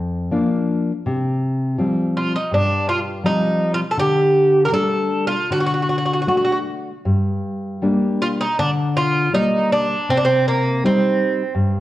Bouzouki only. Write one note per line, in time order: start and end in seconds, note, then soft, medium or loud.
2.17 2.33 F4 medium
2.35 2.53 D#4 medium
2.54 2.89 D4 medium
2.89 2.99 F4 medium
3.26 3.74 D#4 medium
3.74 3.79 F4 medium
3.91 3.97 A4 medium
3.99 4.65 G4 medium
4.65 4.72 A#4 medium
4.74 5.26 A4 medium
5.27 5.52 F4 medium
5.52 5.58 F#4 medium
5.60 5.65 F#4 soft
5.67 5.73 F#4 medium
5.74 5.80 F#4 soft
5.83 5.88 F#4 soft
5.89 5.96 F#4 soft
5.98 6.04 F#4 soft
6.06 6.11 F#4 soft
6.13 6.19 F#4 soft
6.22 6.27 F#4 soft
6.28 6.34 F#4 soft
6.37 6.42 F#4 soft
6.44 6.50 F#4 soft
6.52 6.58 F#4 soft
8.22 8.27 F4 medium
8.41 8.58 D#4 medium
8.59 8.70 D4 medium
8.97 9.32 F4 medium
9.35 9.70 D#4 medium
9.73 10.11 D4 medium
10.10 10.17 C4 medium
10.17 10.24 D4 medium
10.25 10.48 C4 medium
10.48 10.85 A#3 medium
10.86 11.53 C4 medium